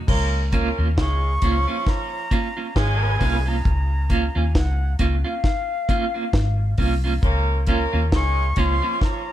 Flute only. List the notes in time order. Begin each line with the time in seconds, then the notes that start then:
1.00 C#6
1.90 A#5
2.79 G#5
3.48 A#5
4.38 G#5
4.57 F#5
5.27 F5
8.15 C#6
8.59 C6
9.04 A#5